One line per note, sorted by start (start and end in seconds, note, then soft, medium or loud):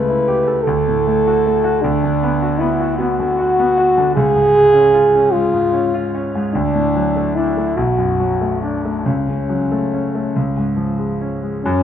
0.00 0.62 C#2 medium
0.00 0.68 C#3 soft
0.00 0.19 A3 soft
0.00 0.65 B4 medium
0.08 0.39 E4 soft
0.28 0.58 G4 soft
0.47 0.66 A4 soft
0.64 1.80 D2 medium
0.64 1.83 A4 medium
0.88 1.17 A2 soft
1.07 1.37 A3 soft
1.27 1.57 F#4 soft
1.46 1.76 A3 soft
1.64 1.83 F#4 medium
1.82 4.13 D2 medium
1.82 2.61 D4 medium
2.03 2.34 D3 soft
2.23 2.54 B3 medium
2.42 2.73 F#4 soft
2.60 2.92 B3 medium
2.60 2.98 E4 medium
2.80 3.11 F#4 soft
2.99 3.31 B3 medium
2.99 4.13 F#4 loud
3.19 3.50 D3 soft
3.39 3.70 F#4 soft
3.59 3.89 B3 medium
3.78 4.08 F#4 medium
3.97 4.16 D3 medium
4.15 6.50 C#2 medium
4.15 5.34 G#4 loud
4.35 4.67 G#2 soft
4.55 4.86 G#3 medium
4.74 5.06 C#4 soft
4.94 5.26 F4 medium
5.15 5.46 C#4 soft
5.32 5.66 G#3 medium
5.32 6.26 F4 medium
5.53 5.85 G#2 soft
5.73 6.05 C#4 soft
5.94 6.26 F4 medium
6.14 6.46 C#4 medium
6.35 6.55 G#2 medium
6.53 7.73 D2 medium
6.53 7.37 D4 medium
6.75 7.07 A2 soft
6.96 7.28 F#3 soft
7.16 7.48 A3 soft
7.35 7.69 D4 soft
7.35 7.78 E4 medium
7.57 7.77 A3 soft
7.77 9.01 B1 medium
7.77 8.61 F#4 medium
7.98 8.31 F#2 soft
8.20 8.53 F#3 soft
8.41 8.75 A3 soft
8.62 9.07 D4 medium
8.62 8.97 D4 soft
8.85 9.06 A3 soft
9.05 10.32 C#2 soft
9.05 11.21 C#4 medium
9.28 9.63 C#3 soft
9.49 9.84 F#3 soft
9.72 10.06 A3 soft
9.94 10.27 C#4 soft
10.15 10.35 A3 soft
10.36 11.60 C#2 medium
10.57 10.91 G#2 soft
10.76 11.11 F3 soft
10.99 11.33 G#3 soft
11.21 11.55 C#4 soft
11.43 11.64 G#3 soft
11.64 11.83 F#2 medium
11.64 11.83 C#4 loud